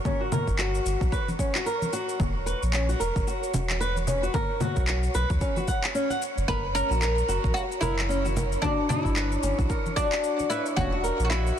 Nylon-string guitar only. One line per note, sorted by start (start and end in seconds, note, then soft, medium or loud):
0.05 0.20 C#4 medium
0.21 0.32 F#4 medium
0.32 0.58 A#4 medium
0.59 1.11 F#4 medium
1.12 1.27 B4 medium
1.39 1.54 C#4 medium
1.55 1.66 F#4 medium
1.66 1.92 A#4 medium
1.93 2.20 F#4 medium
2.46 2.61 B4 medium
2.73 2.88 C#4 medium
2.89 3.00 F#4 medium
3.00 3.26 A#4 medium
3.27 3.80 F#4 medium
3.80 3.95 B4 loud
4.07 4.22 C#4 medium
4.23 4.34 F#4 medium
4.34 4.60 A#4 medium
4.61 5.14 F#4 medium
5.15 5.29 B4 medium
5.41 5.56 C#4 medium
5.57 5.68 F#4 medium
5.68 5.82 F#5 medium
5.95 6.09 C#4 medium
6.10 6.21 F#5 medium
6.48 6.63 A#4 loud
6.75 6.90 C#4 medium
6.91 7.01 F#4 medium
7.02 7.28 A#4 medium
7.28 7.81 F#4 loud
7.82 7.97 A#4 loud
8.09 8.24 C#4 medium
8.25 8.35 F#4 medium
8.36 8.62 A#4 medium
8.63 9.15 F#4 medium
9.16 9.31 B4 medium
9.43 9.58 C#4 medium
9.58 9.69 F#4 medium
9.69 9.95 A#4 medium
9.97 10.49 F#4 loud
10.50 10.65 B4 medium
10.77 10.92 C#4 medium
10.92 11.03 F#4 medium
11.04 11.29 A#4 medium
11.31 11.59 F#4 medium